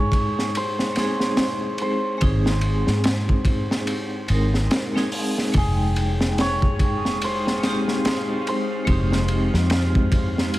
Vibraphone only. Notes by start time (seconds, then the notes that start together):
Already playing: G#3 D#4 G#4
0.93 G#3 C4
0.97 D#4 G#4
2.18 G#3 C4
2.22 D#4 G#4
4.28 G#3 C4 D#4 A#4
4.94 G#3 C4 D#4 G#4
5.52 G#3
5.56 D#4 G5
7.60 G#3 C4
7.65 D#4 G4
8.85 G#3 C4
8.90 D#4 G4